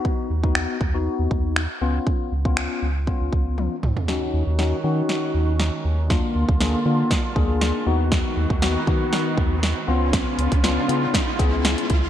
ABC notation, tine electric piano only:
X:1
M:4/4
L:1/16
Q:1/4=119
K:Ebm
V:1 name="Tine electric piano"
[=B,^D^F]2 z [B,DF]3 z [B,DF]4- [B,DF] z2 [C_D=F]2- | [CDF]2 z [CDF]3 z2 [CDF]4- [CDF] z3 | [DEG]3 z [DEG] z [DEG]4- [DEG] z4 z | [B,=DF]3 z [B,DA] z [B,DF]3 z [B,DA]4 [=B,^D^F]2- |
[=B,^D^F]3 z [B,DF] z [B,DF]4- [B,DF] z3 [C_D=F]2- | [CDF]3 z [CDF] z [CDF]3 z [CDA]4 z2 |]